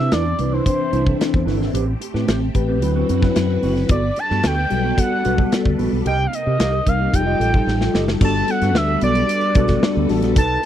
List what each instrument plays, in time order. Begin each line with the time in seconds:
Already playing: string machine C3 C4 D4 E4, analog synth lead E5
0.00 clean electric guitar D4 E4 B4
0.12 fretless electric bass E2, clean electric guitar D4 E4 B4, analog synth lead D5, snare, closed hi-hat
0.25 muted clean electric guitar stroke
0.38 fretless electric bass C2, tine electric piano E3 C4 D4 B4, muted clean electric guitar stroke, closed hi-hat
0.46 analog synth lead D5
0.52 clean electric guitar D4 E4 B4, analog synth lead C5
0.66 tine electric piano E3 C4 D4 C5, muted clean electric guitar stroke, kick, closed hi-hat
0.79 muted clean electric guitar stroke
0.92 fretless electric bass C2, clean electric guitar D4 E4 C5, closed hi-hat
1.06 tine electric piano E3 C4 D4 A4, muted clean electric guitar stroke, kick
1.15 tine electric piano C5
1.19 muted clean electric guitar stroke, snare, closed hi-hat
1.34 fretless electric bass E2, kick
1.46 fretless electric bass G1, clean electric guitar D4 E4 B4, snare, open hi-hat
1.60 fretless electric bass G#1, muted clean electric guitar stroke, snare
1.72 fretless electric bass A1, string machine A3 C4 G4, clean electric guitar C4 G4 B4, closed hi-hat
1.86 muted clean electric guitar stroke
2.00 muted clean electric guitar stroke, closed hi-hat
2.14 fretless electric bass A2, clean electric guitar C4 G4 B4, snare
2.27 fretless electric bass A1, clean electric guitar C4 G4 C5, snare, closed hi-hat
2.41 muted clean electric guitar stroke
2.54 fretless electric bass A1, tine electric piano A3 C4 G4 B4, muted clean electric guitar stroke, kick, closed hi-hat
2.68 clean electric guitar C4 G4 B4
2.81 fretless electric bass D2, string machine D3 E4 F#4 B4, tine electric piano F#3 C4 E4 B4, muted clean electric guitar stroke, closed hi-hat
2.96 clean electric guitar C4 F#4 B4
3.09 fretless electric bass F#2, clean electric guitar C4 F#4 B4, closed hi-hat
3.21 tine electric piano F#3 C4 E4 B4, muted clean electric guitar stroke, kick, snare
3.36 fretless electric bass F#2, snare, closed hi-hat
3.50 muted clean electric guitar stroke
3.62 fretless electric bass F#1, clean electric guitar C4 F#4 B4, open hi-hat
3.76 muted clean electric guitar stroke, snare
3.88 fretless electric bass G1, string machine G3 D4 A4, clean electric guitar B3 F#4 A4, analog synth lead D5, kick, closed hi-hat
4.04 muted clean electric guitar stroke
4.16 analog synth lead A5, muted clean electric guitar stroke, closed hi-hat
4.30 fretless electric bass G2, clean electric guitar B3 F#4 A4, snare
4.43 fretless electric bass D2, clean electric guitar B3 F#4 A4, analog synth lead G5, snare, closed hi-hat
4.57 muted clean electric guitar stroke
4.70 fretless electric bass B1, tine electric piano G3 B3 F#4 A4, muted clean electric guitar stroke, closed hi-hat
4.83 clean electric guitar B3 F#4 A4
4.97 tine electric piano G3 B3 F#4 A4, analog synth lead F#5, muted clean electric guitar stroke, kick, closed hi-hat
5.11 muted clean electric guitar stroke
5.24 fretless electric bass B1, clean electric guitar B3 F#4 B4, closed hi-hat
5.37 tine electric piano G3 B3 F#4 A4, muted clean electric guitar stroke, kick
5.52 muted clean electric guitar stroke, snare, closed hi-hat
5.65 fretless electric bass D2, kick
5.79 fretless electric bass A#1, clean electric guitar B3 F#4 A4, open hi-hat
5.92 fretless electric bass B1, muted clean electric guitar stroke
6.05 fretless electric bass C2, string machine C3 A#3 D#4, clean electric guitar G4 A#4 D#5, analog synth lead G5, closed hi-hat
6.19 muted clean electric guitar stroke
6.27 analog synth lead F5
6.33 analog synth lead D#5, muted clean electric guitar stroke, closed hi-hat
6.46 fretless electric bass C3, clean electric guitar G4 A#4 D#5
6.59 fretless electric bass C2, clean electric guitar G4 A#4 F5, snare, closed hi-hat
6.73 muted clean electric guitar stroke
6.86 fretless electric bass C2, tine electric piano G3 C4 D#4 A#4, analog synth lead F5, muted clean electric guitar stroke, kick, closed hi-hat
6.99 clean electric guitar G4 A#4 D#5
7.12 fretless electric bass F1, string machine F3 G4 A4, tine electric piano G3 D#4 F4 G4, analog synth lead G5, muted clean electric guitar stroke, kick, closed hi-hat
7.20 tine electric piano A4
7.26 clean electric guitar G4 A4 D#5
7.40 fretless electric bass A1, clean electric guitar G4 A4 D#5, closed hi-hat
7.53 tine electric piano G3 D#4 F4 A4, kick
7.67 fretless electric bass A1, muted clean electric guitar stroke, snare
7.81 muted clean electric guitar stroke, snare
7.94 fretless electric bass F#1, clean electric guitar G4 A4 D#5, snare
8.08 muted clean electric guitar stroke, snare
8.21 fretless electric bass G1, tine electric piano G3 B3 D4 F#4 A4, string machine G3 F#4 A4 B4, clean electric guitar B3 F#4 A4, analog synth lead A5, kick, crash
8.48 analog synth lead F#5, muted clean electric guitar stroke, closed hi-hat
8.61 fretless electric bass G2, clean electric guitar B3 F#4 A4, snare, closed hi-hat
8.75 fretless electric bass D2, analog synth lead E5, snare
8.88 muted clean electric guitar stroke
9.01 fretless electric bass B1, clean electric guitar B3 F#4 A4, analog synth lead D5, closed hi-hat
9.15 muted clean electric guitar stroke, closed hi-hat
9.29 muted clean electric guitar stroke, closed hi-hat
9.41 muted clean electric guitar stroke, closed hi-hat
9.55 fretless electric bass B1, tine electric piano G3 B3 D4 F#4 A4, clean electric guitar B3 F#4 A4, kick, closed hi-hat
9.68 clean electric guitar B3 F#4 A4, kick, snare, closed hi-hat
9.82 muted clean electric guitar stroke, snare
9.95 fretless electric bass D2, clean electric guitar B3 F#4 A4
10.09 fretless electric bass A1, tine electric piano G3 B3 D4 F#4 A4, muted clean electric guitar stroke, snare, open hi-hat
10.22 fretless electric bass A#1, muted clean electric guitar stroke, snare, closed hi-hat
10.35 fretless electric bass B1, string machine A3 B3 D#4, clean electric guitar D#4 A4 B4, analog synth lead A5, kick, closed hi-hat